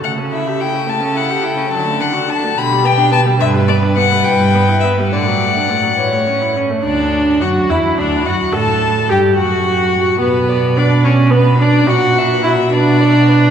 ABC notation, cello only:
X:1
M:6/8
L:1/8
Q:3/8=71
K:D
V:1 name="Cello" clef=bass
C,3 C,3 | D,3 B,,3 | G,,3 G,,3 | A,,3 A,,3 |
D,,2 F,, E,, D,, F,, | A,,2 G,, F,,3 | B,,6 | ^A,,3 B,,3 |]